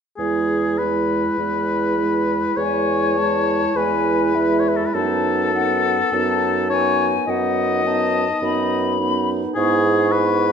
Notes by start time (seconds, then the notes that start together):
0.17 E2 G#3 E4 G#4
0.78 G#3 E4 B4
1.38 E2 G#3 E4
1.97 G#3 E4
2.56 E2 G#3 E4 C#5 G#5
3.17 G#3 E4 A5
3.76 E2 G#3 E4 B4 G#5
4.35 G#3 E4 E5
4.60 C#5
4.69 B4
4.77 A4
4.86 B4
4.94 F#2 B3 D#4 A4 A5
5.54 B3 D#4 F#5
6.13 F#2 B3 D#4 A5
6.70 B3 D#4 C#5 G#5
7.27 F#2 B3 D#4 D#5 F#5
7.84 B3 D#4 A5
8.42 F#2 B3 D#4 B5
9.00 B3 D#4
9.55 G#2 B3 E4 G#4 C#6
10.12 B3 E4 B4